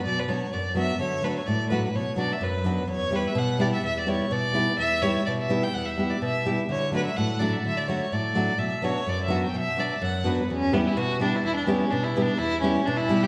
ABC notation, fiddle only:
X:1
M:2/4
L:1/16
Q:"Swing 16ths" 1/4=127
K:Edor
V:1 name="Fiddle"
d B c2 d2 e2 | c2 B c d2 B B | c2 d e B4 | c2 B e f2 d e |
e d c2 d4 | e2 c2 d e2 g | f e2 d e3 z | c2 B e f2 d e |
e d c2 d4 | e2 c2 d e2 g | e2 d e f2 B2 | C2 B, E F2 D E |
E D C2 (3D2 E2 D2 | E2 C2 D E2 G |]